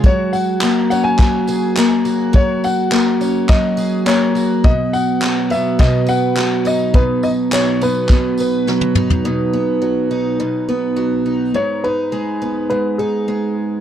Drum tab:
TB |--x---x---x---x-|--x---x---x---x-|--x---x---x---x-|--x---x---x-----|
CP |----x---x---x---|----x---x---x---|----x---x---x---|----x---x-------|
SD |----------------|----------------|----------------|------------o---|
T1 |----------------|----------------|----------------|-------------o--|
T2 |----------------|----------------|----------------|--------------o-|
FT |----------------|----------------|----------------|---------------o|
BD |o-------o-------|o-------o-------|o-------o-------|o-------o-------|

TB |----------------|----------------|
CP |----------------|----------------|
SD |----------------|----------------|
T1 |----------------|----------------|
T2 |----------------|----------------|
FT |----------------|----------------|
BD |----------------|----------------|